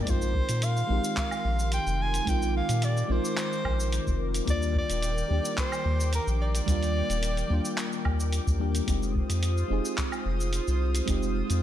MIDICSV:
0, 0, Header, 1, 6, 480
1, 0, Start_track
1, 0, Tempo, 550459
1, 63, Time_signature, 4, 2, 24, 8
1, 10138, End_track
2, 0, Start_track
2, 0, Title_t, "Analog synth pad"
2, 0, Program_c, 0, 89
2, 0, Note_on_c, 0, 70, 71
2, 66, Note_on_c, 0, 51, 77
2, 67, Note_on_c, 0, 84, 84
2, 1966, Note_off_c, 0, 84, 0
2, 1978, Note_on_c, 0, 86, 87
2, 3881, Note_off_c, 0, 86, 0
2, 3906, Note_on_c, 0, 86, 81
2, 3907, Note_on_c, 0, 79, 71
2, 7706, Note_off_c, 0, 70, 0
2, 7709, Note_off_c, 0, 51, 0
2, 7709, Note_off_c, 0, 86, 0
2, 7710, Note_off_c, 0, 79, 0
2, 7741, Note_on_c, 0, 72, 69
2, 7743, Note_on_c, 0, 65, 77
2, 7743, Note_on_c, 0, 87, 82
2, 10138, Note_off_c, 0, 65, 0
2, 10138, Note_off_c, 0, 72, 0
2, 10138, Note_off_c, 0, 87, 0
2, 10138, End_track
3, 0, Start_track
3, 0, Title_t, "Soprano saxophone"
3, 0, Program_c, 1, 64
3, 21, Note_on_c, 1, 74, 58
3, 84, Note_on_c, 1, 72, 88
3, 97, Note_off_c, 1, 74, 0
3, 558, Note_on_c, 1, 77, 101
3, 571, Note_off_c, 1, 72, 0
3, 1028, Note_off_c, 1, 77, 0
3, 1033, Note_on_c, 1, 77, 101
3, 1475, Note_off_c, 1, 77, 0
3, 1514, Note_on_c, 1, 79, 96
3, 1759, Note_on_c, 1, 80, 95
3, 1772, Note_off_c, 1, 79, 0
3, 1996, Note_on_c, 1, 79, 104
3, 2009, Note_off_c, 1, 80, 0
3, 2229, Note_off_c, 1, 79, 0
3, 2239, Note_on_c, 1, 77, 91
3, 2479, Note_on_c, 1, 74, 100
3, 2492, Note_off_c, 1, 77, 0
3, 2659, Note_off_c, 1, 74, 0
3, 2659, Note_on_c, 1, 74, 58
3, 2716, Note_on_c, 1, 72, 88
3, 2730, Note_off_c, 1, 74, 0
3, 3670, Note_off_c, 1, 72, 0
3, 3925, Note_on_c, 1, 74, 109
3, 4138, Note_off_c, 1, 74, 0
3, 4169, Note_on_c, 1, 74, 108
3, 4841, Note_off_c, 1, 74, 0
3, 4879, Note_on_c, 1, 72, 98
3, 5318, Note_off_c, 1, 72, 0
3, 5360, Note_on_c, 1, 70, 87
3, 5464, Note_off_c, 1, 70, 0
3, 5596, Note_on_c, 1, 74, 104
3, 6995, Note_off_c, 1, 74, 0
3, 10138, End_track
4, 0, Start_track
4, 0, Title_t, "FM electric piano"
4, 0, Program_c, 2, 5
4, 0, Control_c, 2, 64, 127
4, 38, Note_on_c, 2, 56, 77
4, 53, Note_on_c, 2, 60, 73
4, 67, Note_on_c, 2, 63, 70
4, 73, Control_c, 2, 64, 0
4, 80, Note_on_c, 2, 65, 89
4, 236, Control_c, 2, 64, 127
4, 743, Note_off_c, 2, 56, 0
4, 751, Note_off_c, 2, 60, 0
4, 757, Note_off_c, 2, 63, 0
4, 761, Note_on_c, 2, 56, 77
4, 764, Note_off_c, 2, 65, 0
4, 775, Note_on_c, 2, 60, 71
4, 789, Note_on_c, 2, 63, 68
4, 803, Note_on_c, 2, 67, 83
4, 1944, Note_off_c, 2, 56, 0
4, 1951, Note_off_c, 2, 60, 0
4, 1958, Note_off_c, 2, 63, 0
4, 1963, Note_on_c, 2, 56, 89
4, 1965, Note_off_c, 2, 67, 0
4, 1976, Note_on_c, 2, 60, 88
4, 1990, Note_on_c, 2, 63, 86
4, 2005, Note_on_c, 2, 65, 106
4, 2665, Note_off_c, 2, 56, 0
4, 2672, Note_off_c, 2, 60, 0
4, 2678, Note_on_c, 2, 56, 79
4, 2679, Note_off_c, 2, 63, 0
4, 2686, Note_off_c, 2, 65, 0
4, 2694, Note_on_c, 2, 60, 77
4, 2708, Note_on_c, 2, 63, 75
4, 2720, Note_on_c, 2, 65, 92
4, 3863, Note_off_c, 2, 56, 0
4, 3871, Note_off_c, 2, 60, 0
4, 3878, Note_off_c, 2, 63, 0
4, 3881, Note_on_c, 2, 55, 84
4, 3884, Note_off_c, 2, 65, 0
4, 3894, Note_on_c, 2, 58, 69
4, 3908, Note_on_c, 2, 62, 72
4, 3914, Control_c, 2, 64, 0
4, 3923, Note_on_c, 2, 65, 90
4, 4073, Control_c, 2, 64, 127
4, 4584, Note_off_c, 2, 55, 0
4, 4591, Note_off_c, 2, 58, 0
4, 4598, Note_off_c, 2, 62, 0
4, 4604, Note_on_c, 2, 55, 76
4, 4605, Note_off_c, 2, 65, 0
4, 4617, Note_on_c, 2, 58, 68
4, 4634, Note_on_c, 2, 62, 72
4, 4647, Note_on_c, 2, 67, 86
4, 5786, Note_off_c, 2, 55, 0
4, 5792, Note_off_c, 2, 58, 0
4, 5801, Note_off_c, 2, 62, 0
4, 5805, Note_on_c, 2, 55, 90
4, 5808, Note_off_c, 2, 67, 0
4, 5819, Note_on_c, 2, 58, 85
4, 5832, Note_on_c, 2, 62, 85
4, 5845, Note_on_c, 2, 65, 108
4, 6506, Note_off_c, 2, 55, 0
4, 6513, Note_off_c, 2, 58, 0
4, 6520, Note_off_c, 2, 62, 0
4, 6520, Note_on_c, 2, 55, 79
4, 6526, Note_off_c, 2, 65, 0
4, 6537, Note_on_c, 2, 58, 77
4, 6551, Note_on_c, 2, 62, 73
4, 6564, Note_on_c, 2, 65, 92
4, 7469, Note_off_c, 2, 55, 0
4, 7477, Note_off_c, 2, 58, 0
4, 7484, Note_off_c, 2, 62, 0
4, 7487, Note_on_c, 2, 55, 78
4, 7490, Note_off_c, 2, 65, 0
4, 7495, Note_on_c, 2, 58, 72
4, 7502, Note_on_c, 2, 62, 74
4, 7509, Note_on_c, 2, 67, 92
4, 7707, Note_off_c, 2, 55, 0
4, 7711, Note_off_c, 2, 58, 0
4, 7715, Note_off_c, 2, 62, 0
4, 7719, Note_off_c, 2, 67, 0
4, 7719, Note_on_c, 2, 56, 80
4, 7734, Note_on_c, 2, 60, 69
4, 7748, Note_on_c, 2, 63, 70
4, 7753, Control_c, 2, 64, 0
4, 7762, Note_on_c, 2, 67, 86
4, 7928, Control_c, 2, 64, 127
4, 8423, Note_off_c, 2, 56, 0
4, 8431, Note_off_c, 2, 60, 0
4, 8438, Note_off_c, 2, 63, 0
4, 8440, Note_on_c, 2, 56, 79
4, 8445, Note_off_c, 2, 67, 0
4, 8454, Note_on_c, 2, 60, 67
4, 8467, Note_on_c, 2, 63, 73
4, 8483, Note_on_c, 2, 68, 81
4, 9624, Note_off_c, 2, 56, 0
4, 9631, Note_off_c, 2, 60, 0
4, 9637, Note_off_c, 2, 63, 0
4, 9640, Note_on_c, 2, 56, 87
4, 9645, Note_off_c, 2, 68, 0
4, 9654, Note_on_c, 2, 60, 83
4, 9667, Note_on_c, 2, 63, 82
4, 9682, Note_on_c, 2, 67, 104
4, 10138, Note_off_c, 2, 56, 0
4, 10138, Note_off_c, 2, 60, 0
4, 10138, Note_off_c, 2, 63, 0
4, 10138, Note_off_c, 2, 67, 0
4, 10138, End_track
5, 0, Start_track
5, 0, Title_t, "Analog synth bass"
5, 0, Program_c, 3, 38
5, 60, Note_on_c, 3, 34, 96
5, 361, Note_off_c, 3, 34, 0
5, 427, Note_on_c, 3, 46, 91
5, 722, Note_off_c, 3, 46, 0
5, 781, Note_on_c, 3, 34, 108
5, 866, Note_off_c, 3, 34, 0
5, 1260, Note_on_c, 3, 34, 81
5, 1561, Note_off_c, 3, 34, 0
5, 1624, Note_on_c, 3, 29, 79
5, 1921, Note_off_c, 3, 29, 0
5, 1978, Note_on_c, 3, 34, 99
5, 2280, Note_off_c, 3, 34, 0
5, 2345, Note_on_c, 3, 46, 94
5, 2641, Note_off_c, 3, 46, 0
5, 2697, Note_on_c, 3, 34, 104
5, 2784, Note_off_c, 3, 34, 0
5, 3179, Note_on_c, 3, 34, 80
5, 3481, Note_off_c, 3, 34, 0
5, 3547, Note_on_c, 3, 29, 85
5, 3842, Note_off_c, 3, 29, 0
5, 3902, Note_on_c, 3, 39, 97
5, 4202, Note_off_c, 3, 39, 0
5, 4267, Note_on_c, 3, 27, 92
5, 4562, Note_off_c, 3, 27, 0
5, 4624, Note_on_c, 3, 39, 101
5, 4708, Note_off_c, 3, 39, 0
5, 5102, Note_on_c, 3, 39, 79
5, 5402, Note_off_c, 3, 39, 0
5, 5467, Note_on_c, 3, 34, 83
5, 5762, Note_off_c, 3, 34, 0
5, 5821, Note_on_c, 3, 39, 95
5, 6122, Note_off_c, 3, 39, 0
5, 6185, Note_on_c, 3, 27, 86
5, 6481, Note_off_c, 3, 27, 0
5, 6541, Note_on_c, 3, 39, 106
5, 6626, Note_off_c, 3, 39, 0
5, 7021, Note_on_c, 3, 39, 80
5, 7322, Note_off_c, 3, 39, 0
5, 7386, Note_on_c, 3, 39, 98
5, 7682, Note_off_c, 3, 39, 0
5, 7739, Note_on_c, 3, 29, 91
5, 8041, Note_off_c, 3, 29, 0
5, 8104, Note_on_c, 3, 41, 93
5, 8401, Note_off_c, 3, 41, 0
5, 8459, Note_on_c, 3, 29, 103
5, 8546, Note_off_c, 3, 29, 0
5, 8940, Note_on_c, 3, 29, 82
5, 9241, Note_off_c, 3, 29, 0
5, 9308, Note_on_c, 3, 36, 84
5, 9603, Note_off_c, 3, 36, 0
5, 9660, Note_on_c, 3, 29, 94
5, 9961, Note_off_c, 3, 29, 0
5, 10028, Note_on_c, 3, 41, 97
5, 10138, Note_off_c, 3, 41, 0
5, 10138, End_track
6, 0, Start_track
6, 0, Title_t, "Drums"
6, 60, Note_on_c, 9, 36, 110
6, 60, Note_on_c, 9, 42, 66
6, 65, Note_on_c, 9, 69, 49
6, 147, Note_off_c, 9, 36, 0
6, 147, Note_off_c, 9, 42, 0
6, 153, Note_off_c, 9, 69, 0
6, 189, Note_on_c, 9, 69, 32
6, 277, Note_off_c, 9, 69, 0
6, 300, Note_on_c, 9, 36, 106
6, 387, Note_off_c, 9, 36, 0
6, 424, Note_on_c, 9, 42, 44
6, 430, Note_on_c, 9, 69, 68
6, 512, Note_off_c, 9, 42, 0
6, 517, Note_off_c, 9, 69, 0
6, 540, Note_on_c, 9, 42, 69
6, 545, Note_on_c, 9, 69, 55
6, 627, Note_off_c, 9, 42, 0
6, 633, Note_off_c, 9, 69, 0
6, 670, Note_on_c, 9, 69, 32
6, 757, Note_off_c, 9, 69, 0
6, 909, Note_on_c, 9, 69, 69
6, 996, Note_off_c, 9, 69, 0
6, 1018, Note_on_c, 9, 39, 76
6, 1018, Note_on_c, 9, 42, 63
6, 1019, Note_on_c, 9, 36, 104
6, 1024, Note_on_c, 9, 69, 53
6, 1106, Note_off_c, 9, 36, 0
6, 1106, Note_off_c, 9, 39, 0
6, 1106, Note_off_c, 9, 42, 0
6, 1111, Note_off_c, 9, 69, 0
6, 1145, Note_on_c, 9, 77, 71
6, 1150, Note_on_c, 9, 69, 30
6, 1232, Note_off_c, 9, 77, 0
6, 1237, Note_off_c, 9, 69, 0
6, 1389, Note_on_c, 9, 69, 63
6, 1476, Note_off_c, 9, 69, 0
6, 1498, Note_on_c, 9, 42, 62
6, 1503, Note_on_c, 9, 69, 46
6, 1585, Note_off_c, 9, 42, 0
6, 1590, Note_off_c, 9, 69, 0
6, 1631, Note_on_c, 9, 69, 31
6, 1718, Note_off_c, 9, 69, 0
6, 1865, Note_on_c, 9, 42, 42
6, 1871, Note_on_c, 9, 69, 63
6, 1952, Note_off_c, 9, 42, 0
6, 1958, Note_off_c, 9, 69, 0
6, 1978, Note_on_c, 9, 36, 114
6, 1982, Note_on_c, 9, 42, 65
6, 1987, Note_on_c, 9, 69, 54
6, 2065, Note_off_c, 9, 36, 0
6, 2069, Note_off_c, 9, 42, 0
6, 2074, Note_off_c, 9, 69, 0
6, 2113, Note_on_c, 9, 69, 33
6, 2200, Note_off_c, 9, 69, 0
6, 2345, Note_on_c, 9, 42, 46
6, 2351, Note_on_c, 9, 69, 68
6, 2433, Note_off_c, 9, 42, 0
6, 2438, Note_off_c, 9, 69, 0
6, 2459, Note_on_c, 9, 42, 64
6, 2465, Note_on_c, 9, 69, 55
6, 2546, Note_off_c, 9, 42, 0
6, 2552, Note_off_c, 9, 69, 0
6, 2592, Note_on_c, 9, 69, 34
6, 2679, Note_off_c, 9, 69, 0
6, 2832, Note_on_c, 9, 69, 66
6, 2919, Note_off_c, 9, 69, 0
6, 2941, Note_on_c, 9, 39, 75
6, 2941, Note_on_c, 9, 42, 66
6, 2946, Note_on_c, 9, 69, 52
6, 3028, Note_off_c, 9, 39, 0
6, 3028, Note_off_c, 9, 42, 0
6, 3034, Note_off_c, 9, 69, 0
6, 3075, Note_on_c, 9, 69, 33
6, 3162, Note_off_c, 9, 69, 0
6, 3180, Note_on_c, 9, 36, 60
6, 3183, Note_on_c, 9, 77, 70
6, 3267, Note_off_c, 9, 36, 0
6, 3270, Note_off_c, 9, 77, 0
6, 3313, Note_on_c, 9, 69, 62
6, 3400, Note_off_c, 9, 69, 0
6, 3422, Note_on_c, 9, 42, 62
6, 3428, Note_on_c, 9, 69, 50
6, 3510, Note_off_c, 9, 42, 0
6, 3515, Note_off_c, 9, 69, 0
6, 3546, Note_on_c, 9, 36, 95
6, 3552, Note_on_c, 9, 69, 32
6, 3633, Note_off_c, 9, 36, 0
6, 3639, Note_off_c, 9, 69, 0
6, 3788, Note_on_c, 9, 42, 40
6, 3793, Note_on_c, 9, 69, 63
6, 3875, Note_off_c, 9, 42, 0
6, 3881, Note_off_c, 9, 69, 0
6, 3901, Note_on_c, 9, 36, 115
6, 3902, Note_on_c, 9, 42, 56
6, 3907, Note_on_c, 9, 69, 52
6, 3988, Note_off_c, 9, 36, 0
6, 3989, Note_off_c, 9, 42, 0
6, 3995, Note_off_c, 9, 69, 0
6, 4033, Note_on_c, 9, 69, 34
6, 4120, Note_off_c, 9, 69, 0
6, 4141, Note_on_c, 9, 36, 102
6, 4228, Note_off_c, 9, 36, 0
6, 4269, Note_on_c, 9, 42, 41
6, 4274, Note_on_c, 9, 69, 68
6, 4356, Note_off_c, 9, 42, 0
6, 4361, Note_off_c, 9, 69, 0
6, 4382, Note_on_c, 9, 42, 61
6, 4387, Note_on_c, 9, 69, 56
6, 4469, Note_off_c, 9, 42, 0
6, 4474, Note_off_c, 9, 69, 0
6, 4514, Note_on_c, 9, 69, 35
6, 4602, Note_off_c, 9, 69, 0
6, 4753, Note_on_c, 9, 69, 73
6, 4840, Note_off_c, 9, 69, 0
6, 4862, Note_on_c, 9, 36, 108
6, 4862, Note_on_c, 9, 39, 73
6, 4862, Note_on_c, 9, 42, 62
6, 4867, Note_on_c, 9, 69, 51
6, 4949, Note_off_c, 9, 36, 0
6, 4949, Note_off_c, 9, 39, 0
6, 4949, Note_off_c, 9, 42, 0
6, 4955, Note_off_c, 9, 69, 0
6, 4989, Note_on_c, 9, 77, 72
6, 4994, Note_on_c, 9, 69, 33
6, 5076, Note_off_c, 9, 77, 0
6, 5081, Note_off_c, 9, 69, 0
6, 5234, Note_on_c, 9, 69, 62
6, 5321, Note_off_c, 9, 69, 0
6, 5342, Note_on_c, 9, 42, 58
6, 5348, Note_on_c, 9, 69, 53
6, 5430, Note_off_c, 9, 42, 0
6, 5435, Note_off_c, 9, 69, 0
6, 5474, Note_on_c, 9, 69, 33
6, 5561, Note_off_c, 9, 69, 0
6, 5708, Note_on_c, 9, 42, 37
6, 5714, Note_on_c, 9, 69, 69
6, 5795, Note_off_c, 9, 42, 0
6, 5801, Note_off_c, 9, 69, 0
6, 5821, Note_on_c, 9, 36, 103
6, 5823, Note_on_c, 9, 42, 59
6, 5829, Note_on_c, 9, 69, 56
6, 5908, Note_off_c, 9, 36, 0
6, 5911, Note_off_c, 9, 42, 0
6, 5916, Note_off_c, 9, 69, 0
6, 5952, Note_on_c, 9, 42, 30
6, 5957, Note_on_c, 9, 69, 35
6, 6039, Note_off_c, 9, 42, 0
6, 6044, Note_off_c, 9, 69, 0
6, 6190, Note_on_c, 9, 42, 42
6, 6195, Note_on_c, 9, 69, 66
6, 6277, Note_off_c, 9, 42, 0
6, 6282, Note_off_c, 9, 69, 0
6, 6302, Note_on_c, 9, 42, 62
6, 6307, Note_on_c, 9, 69, 58
6, 6389, Note_off_c, 9, 42, 0
6, 6394, Note_off_c, 9, 69, 0
6, 6430, Note_on_c, 9, 42, 28
6, 6435, Note_on_c, 9, 69, 34
6, 6517, Note_off_c, 9, 42, 0
6, 6522, Note_off_c, 9, 69, 0
6, 6671, Note_on_c, 9, 69, 64
6, 6759, Note_off_c, 9, 69, 0
6, 6781, Note_on_c, 9, 39, 74
6, 6781, Note_on_c, 9, 42, 58
6, 6787, Note_on_c, 9, 69, 56
6, 6868, Note_off_c, 9, 39, 0
6, 6868, Note_off_c, 9, 42, 0
6, 6874, Note_off_c, 9, 69, 0
6, 6910, Note_on_c, 9, 69, 29
6, 6998, Note_off_c, 9, 69, 0
6, 7021, Note_on_c, 9, 36, 58
6, 7021, Note_on_c, 9, 77, 67
6, 7108, Note_off_c, 9, 36, 0
6, 7108, Note_off_c, 9, 77, 0
6, 7150, Note_on_c, 9, 69, 61
6, 7238, Note_off_c, 9, 69, 0
6, 7259, Note_on_c, 9, 42, 52
6, 7265, Note_on_c, 9, 69, 48
6, 7347, Note_off_c, 9, 42, 0
6, 7352, Note_off_c, 9, 69, 0
6, 7386, Note_on_c, 9, 36, 101
6, 7391, Note_on_c, 9, 69, 35
6, 7474, Note_off_c, 9, 36, 0
6, 7478, Note_off_c, 9, 69, 0
6, 7627, Note_on_c, 9, 42, 37
6, 7632, Note_on_c, 9, 69, 64
6, 7714, Note_off_c, 9, 42, 0
6, 7719, Note_off_c, 9, 69, 0
6, 7740, Note_on_c, 9, 36, 112
6, 7741, Note_on_c, 9, 42, 62
6, 7747, Note_on_c, 9, 69, 51
6, 7827, Note_off_c, 9, 36, 0
6, 7828, Note_off_c, 9, 42, 0
6, 7834, Note_off_c, 9, 69, 0
6, 7871, Note_on_c, 9, 69, 33
6, 7959, Note_off_c, 9, 69, 0
6, 7980, Note_on_c, 9, 36, 98
6, 8067, Note_off_c, 9, 36, 0
6, 8107, Note_on_c, 9, 42, 43
6, 8112, Note_on_c, 9, 69, 64
6, 8194, Note_off_c, 9, 42, 0
6, 8199, Note_off_c, 9, 69, 0
6, 8220, Note_on_c, 9, 42, 63
6, 8225, Note_on_c, 9, 69, 55
6, 8307, Note_off_c, 9, 42, 0
6, 8312, Note_off_c, 9, 69, 0
6, 8350, Note_on_c, 9, 69, 33
6, 8437, Note_off_c, 9, 69, 0
6, 8590, Note_on_c, 9, 69, 66
6, 8677, Note_off_c, 9, 69, 0
6, 8699, Note_on_c, 9, 39, 70
6, 8699, Note_on_c, 9, 42, 61
6, 8701, Note_on_c, 9, 36, 95
6, 8705, Note_on_c, 9, 69, 51
6, 8786, Note_off_c, 9, 39, 0
6, 8786, Note_off_c, 9, 42, 0
6, 8788, Note_off_c, 9, 36, 0
6, 8792, Note_off_c, 9, 69, 0
6, 8826, Note_on_c, 9, 77, 71
6, 8831, Note_on_c, 9, 69, 32
6, 8913, Note_off_c, 9, 77, 0
6, 8918, Note_off_c, 9, 69, 0
6, 9072, Note_on_c, 9, 69, 62
6, 9159, Note_off_c, 9, 69, 0
6, 9179, Note_on_c, 9, 42, 53
6, 9185, Note_on_c, 9, 69, 49
6, 9266, Note_off_c, 9, 42, 0
6, 9272, Note_off_c, 9, 69, 0
6, 9310, Note_on_c, 9, 69, 32
6, 9398, Note_off_c, 9, 69, 0
6, 9545, Note_on_c, 9, 42, 41
6, 9550, Note_on_c, 9, 69, 65
6, 9632, Note_off_c, 9, 42, 0
6, 9637, Note_off_c, 9, 69, 0
6, 9658, Note_on_c, 9, 42, 63
6, 9661, Note_on_c, 9, 36, 103
6, 9663, Note_on_c, 9, 69, 48
6, 9745, Note_off_c, 9, 42, 0
6, 9748, Note_off_c, 9, 36, 0
6, 9751, Note_off_c, 9, 69, 0
6, 9790, Note_on_c, 9, 69, 35
6, 9877, Note_off_c, 9, 69, 0
6, 10025, Note_on_c, 9, 42, 45
6, 10031, Note_on_c, 9, 69, 62
6, 10113, Note_off_c, 9, 42, 0
6, 10118, Note_off_c, 9, 69, 0
6, 10138, End_track
0, 0, End_of_file